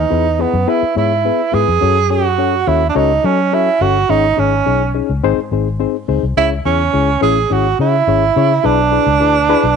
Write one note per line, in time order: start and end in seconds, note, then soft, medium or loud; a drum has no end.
0.00 0.35 E3 medium
0.00 0.43 D#4 medium
0.10 0.44 E2 medium
0.10 0.26 B3 medium
0.10 0.26 E4 medium
0.10 0.26 G#4 medium
0.10 0.26 B4 medium
0.39 0.54 B3 medium
0.39 0.71 B3 medium
0.39 0.54 E4 medium
0.39 0.55 G#4 medium
0.39 0.55 B4 medium
0.53 0.64 F#2 medium
0.67 0.83 B3 medium
0.67 0.83 E4 medium
0.67 0.97 E4 medium
0.67 0.83 G#4 medium
0.67 0.83 B4 loud
0.83 muted fingered electric bass stroke soft
0.95 1.29 G#2 medium
0.95 1.11 B3 medium
0.95 1.12 E4 medium
0.95 1.55 E4 medium
0.95 1.12 G#4 medium
0.95 1.12 C#5 medium
1.25 1.40 B3 medium
1.25 1.40 E4 medium
1.25 1.40 G#4 medium
1.25 1.41 B4 medium
1.52 1.64 G#2 medium
1.52 1.68 B3 medium
1.52 1.68 E4 medium
1.52 1.68 G#4 medium
1.52 2.12 G#4 loud
1.52 1.69 B4 medium
1.68 1.79 F2 medium
1.81 2.63 F#2 loud
1.81 1.97 C#4 medium
1.81 1.97 F#4 medium
1.81 1.97 A4 medium
1.81 1.97 C#5 medium
2.10 2.25 C#4 medium
2.10 2.25 F#4 medium
2.10 2.69 F#4 loud
2.10 2.26 A4 medium
2.10 2.26 C#5 medium
2.38 2.54 C#4 medium
2.38 2.54 F#4 medium
2.38 2.54 A4 medium
2.38 2.54 C#5 medium
2.67 2.89 D#2 medium
2.67 2.82 C#4 medium
2.67 2.89 E4 medium
2.67 2.83 F#4 medium
2.67 2.83 A4 medium
2.67 2.83 C#5 medium
2.89 2.98 D4 medium
2.95 3.18 C#2 medium
2.95 3.11 C#4 medium
2.95 3.27 D#4 medium
2.95 3.11 F#4 medium
2.95 3.11 A4 medium
2.95 3.11 C#5 loud
3.23 3.68 F#3 loud
3.23 3.39 C#4 medium
3.23 3.56 C#4 medium
3.23 3.39 F#4 medium
3.23 3.39 A4 medium
3.23 3.40 C#5 medium
3.53 3.68 C#4 medium
3.53 3.83 E4 medium
3.53 3.68 F#4 medium
3.53 3.68 A4 medium
3.53 3.68 C#5 medium
3.81 4.03 G1 medium
3.81 3.96 C#4 medium
3.81 3.96 F#4 medium
3.81 4.11 F#4 loud
3.81 3.96 A4 medium
3.81 3.97 C#5 medium
4.09 4.31 G#1 loud
4.09 4.91 G#2 medium
4.09 4.25 C#4 medium
4.09 4.25 D#4 medium
4.09 4.41 D#4 medium
4.09 4.25 G#4 medium
4.09 4.25 C#5 medium
4.37 4.60 G#1 medium
4.37 4.53 C#4 medium
4.37 4.95 C#4 medium
4.37 4.53 D#4 medium
4.37 4.53 G#4 medium
4.37 4.53 C#5 medium
4.66 5.00 B1 medium
4.66 4.81 C#4 medium
4.66 4.82 D#4 medium
4.66 4.82 G#4 medium
4.66 4.82 C#5 medium
4.94 5.10 C#4 medium
4.94 5.10 D#4 medium
4.94 5.10 G#4 medium
4.94 5.10 C#5 medium
5.09 5.20 C#2 medium
5.24 5.34 G#1 medium
5.24 6.05 G#2 medium
5.24 5.39 C4 loud
5.24 5.39 D#4 loud
5.24 5.39 G#4 loud
5.24 5.39 C5 loud
5.38 muted fingered electric bass stroke soft
5.52 5.85 G#1 medium
5.52 5.67 C4 medium
5.52 5.67 D#4 medium
5.52 5.67 G#4 medium
5.52 5.68 C5 medium
5.80 5.95 C4 medium
5.80 5.95 D#4 medium
5.80 5.95 G#4 medium
5.80 5.96 C5 medium
6.08 6.20 C#2 medium
6.08 6.24 C4 medium
6.08 6.24 D#4 medium
6.08 6.24 G#4 medium
6.08 6.24 C5 medium
6.23 6.34 C2 medium
6.37 6.59 C#2 medium
6.37 7.18 C#3 medium
6.37 6.52 C#4 medium
6.37 6.50 E4 loud
6.37 6.53 E4 medium
6.37 6.53 G#4 medium
6.37 6.53 C#5 medium
6.65 6.87 E2 medium
6.65 6.81 C#4 medium
6.65 7.18 C#4 medium
6.65 6.81 E4 medium
6.65 6.81 G#4 medium
6.65 6.81 C#5 medium
6.93 7.16 C#2 medium
6.93 7.09 C#4 medium
6.93 7.09 E4 medium
6.93 7.09 G#4 medium
6.93 7.09 C#5 medium
7.21 7.44 A1 medium
7.21 7.37 C#4 loud
7.21 7.37 E4 medium
7.21 7.37 G#4 medium
7.21 7.54 G#4 loud
7.21 7.38 C#5 medium
7.50 7.73 G#1 medium
7.50 7.66 C#4 medium
7.50 7.66 E4 medium
7.50 7.80 F#4 loud
7.50 7.66 G#4 medium
7.50 7.66 C#5 medium
7.79 8.01 C#3 medium
7.79 7.95 C#4 medium
7.79 7.95 E4 medium
7.79 8.67 E4 medium
7.79 7.95 G#4 medium
7.79 7.95 C#5 medium
8.07 8.29 G#1 medium
8.07 8.23 C#4 medium
8.07 8.23 E4 medium
8.07 8.23 G#4 medium
8.07 8.23 C#5 medium
8.36 8.58 C#3 medium
8.36 8.51 C#4 medium
8.36 8.52 E4 medium
8.36 8.52 G#4 medium
8.36 8.52 C#5 loud
8.64 8.98 B1 loud
8.64 9.45 B2 medium
8.64 8.79 D4 medium
8.64 9.76 D4 medium
8.64 8.79 E4 medium
8.64 8.79 G#4 medium
8.64 8.80 B4 medium
8.91 9.07 D4 medium
8.91 9.08 E4 medium
8.91 9.08 G#4 medium
8.91 9.08 B4 medium
9.06 9.18 C#2 medium
9.20 9.36 D4 medium
9.20 9.36 E4 medium
9.20 9.36 G#4 medium
9.20 9.37 B4 medium
9.49 9.65 D4 loud
9.49 9.65 E4 loud
9.49 9.65 G#4 loud
9.49 9.65 B4 loud
9.63 9.76 B1 medium